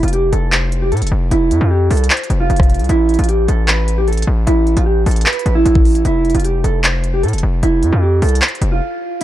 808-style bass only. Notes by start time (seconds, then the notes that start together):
0.03 F1
0.33 F1
0.92 A2
1.02 F1
1.12 F1
1.31 F1
1.51 F2
1.61 F2
1.91 C2
2.30 F1
2.50 F1
2.79 C2
2.89 A1
3.19 A1
3.48 A1
4.27 A1
4.47 A1
4.77 A1
5.06 A1
5.46 A1
5.66 A1
6.05 F1
6.35 F1
6.64 F1
7.23 A2
7.33 F1
7.43 F1
7.63 F1
7.83 F2
7.92 F2
8.22 C2
8.62 F1